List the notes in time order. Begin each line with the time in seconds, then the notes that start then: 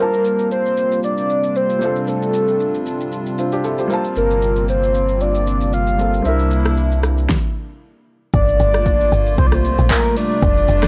Already playing: G3 A#3 G4 C5
0.00 C3 G3 A#3 C4 F4 A#4 A5
0.14 shaker
0.25 shaker
0.39 shaker
0.51 C5, shaker
0.66 shaker
0.77 shaker
0.92 shaker
1.03 D5, shaker
1.18 shaker
1.30 shaker
1.44 shaker
1.55 C5, shaker
1.70 shaker
1.79 G3 C4 D4, shaker
1.83 F4 A4
1.96 shaker
2.08 A4, shaker
2.22 shaker
2.34 shaker
2.48 shaker
2.60 shaker
2.75 shaker
2.86 shaker
3.01 shaker
3.12 shaker
3.26 shaker
3.38 C4 F4, shaker
3.52 D4 G4, shaker
3.64 E4 A4, shaker
3.78 G4 C5, shaker
3.88 G3 A#3 C4, shaker
3.92 F4 A5
4.05 shaker
4.16 G1 A#4, shaker
4.31 shaker
4.42 shaker
4.56 shaker
4.68 C5, shaker
4.83 shaker
4.95 shaker
5.09 shaker
5.21 D5, shaker
5.35 shaker
5.47 shaker
5.61 shaker
5.73 F5, shaker
5.87 shaker
5.98 G3 A#3 C4 F4 A4, shaker
6.14 shaker
6.22 C2 C3 G3 A#3 C4 D4 E4 E5, shaker
6.27 E4 A#4
6.40 shaker
6.51 shaker
6.65 cross-stick, shaker
6.77 shaker
6.92 shaker
7.03 cross-stick, shaker
7.18 shaker
7.29 kick, snare
8.34 G1 C3 G3 A3 A#3 F4 D5, kick, shaker
8.48 shaker
8.60 G1, shaker
8.74 cross-stick, shaker
8.86 kick, shaker
9.01 shaker
9.12 G1, shaker
9.26 shaker
9.38 C2 C5, kick, shaker
9.46 D5
9.52 C5, cross-stick, shaker
9.65 shaker
9.78 A#1, shaker
9.90 A#4, kick, clap, shaker
10.05 shaker
10.17 D4 F4 D5, open hi-hat, shaker
10.31 shaker
10.42 F1, kick, shaker
10.57 shaker
10.68 F1, shaker
10.82 cross-stick, snare, shaker